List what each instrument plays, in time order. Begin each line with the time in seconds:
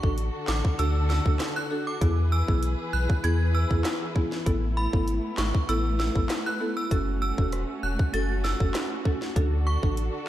Already playing: string section D3 D4 F#4 A4
0.03 sub bass A1, marimba D4 F#4 A4, kick
0.18 closed hi-hat
0.48 sub bass A1, synth bell D6, snare, clap
0.65 kick
0.79 sub bass D2, marimba D4 F#4 A4, synth bell E6, closed hi-hat
1.10 synth bell E6, snare
1.26 sub bass D2, marimba D4 F#4 A4, kick
1.39 cross-stick, snare, clap, closed hi-hat
1.56 synth bell F#6
1.70 marimba D4 F#4 A4
1.87 synth bell D6
2.01 sub bass E2, string section E3 E4 G#4 B4, marimba B3 E4 G#4, kick, closed hi-hat
2.32 synth bell E6
2.48 sub bass B1, marimba B3 E4 G#4, kick
2.63 closed hi-hat
2.93 sub bass B1, synth bell F#6
3.10 kick
3.24 sub bass E2, marimba B3 E4 G#4, synth bell G#6, closed hi-hat
3.55 synth bell E6
3.71 sub bass E2, marimba B3 E4 G#4, kick
3.85 cross-stick, snare, clap, closed hi-hat
4.16 marimba B3 E4 G#4, kick
4.32 snare
4.46 sub bass A1, string section A3 B3, marimba B3 E4 A4, kick, closed hi-hat
4.77 synth bell B5
4.93 sub bass G#1, marimba B3 E4 A4, kick
5.08 closed hi-hat
5.37 sub bass G#1, synth bell C#6, snare, clap
5.55 kick
5.69 sub bass A1, marimba B3 E4 A4, synth bell E6, closed hi-hat
6.00 synth bell E6, snare
6.15 sub bass A1, marimba B3 E4 A4, kick
6.29 cross-stick, snare, clap, closed hi-hat
6.46 synth bell F#6
6.60 marimba B3 E4 A4
6.77 synth bell E6
6.91 sub bass F#1, string section A3 C#4 F#4, marimba C#4 F#4 A4, kick, closed hi-hat
7.22 synth bell E6
7.38 sub bass E1, marimba C#4 F#4 A4, kick
7.52 cross-stick, closed hi-hat
7.83 sub bass E1, synth bell F#6
7.99 kick
8.13 sub bass F#1, marimba C#4 F#4 A4, synth bell A6, closed hi-hat
8.44 synth bell E6, snare
8.60 sub bass F#1, marimba C#4 F#4 A4, kick
8.74 cross-stick, snare, clap, closed hi-hat
9.05 marimba C#4 F#4 A4, kick
9.22 snare
9.36 sub bass D2, string section D3 D4 A4, marimba D4 F#4 A4, kick, closed hi-hat
9.67 synth bell C#6
9.83 sub bass A1, marimba D4 F#4 A4, kick
9.97 closed hi-hat